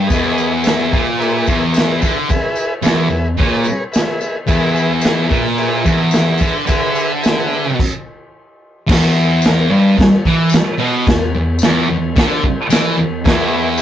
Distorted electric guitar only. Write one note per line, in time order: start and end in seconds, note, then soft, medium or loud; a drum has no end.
0.10 0.91 E2 loud
0.92 1.46 A#2 loud
1.47 2.01 E2 loud
2.01 2.28 D3 loud
2.28 muted distorted electric guitar stroke medium
2.82 3.09 E2 loud
3.10 3.33 E2 medium
3.37 3.65 A#2 loud
4.47 5.29 E2 loud
5.29 5.84 A#2 loud
5.84 6.39 E2 loud
6.41 6.65 D3 loud
6.67 7.77 D3 loud
8.87 9.69 E2 loud
9.71 9.97 G2 loud
9.98 muted distorted electric guitar stroke medium
10.26 10.52 E3 loud
10.52 muted distorted electric guitar stroke medium
10.79 11.06 B2 loud
11.08 11.29 E2 medium
11.35 11.56 E2 medium
11.63 11.88 E2 loud
11.90 12.11 E2 medium
12.16 12.42 D3 loud
12.44 muted distorted electric guitar stroke medium
12.70 12.97 E3 loud
12.96 13.19 E2 medium
13.25 13.82 E2 loud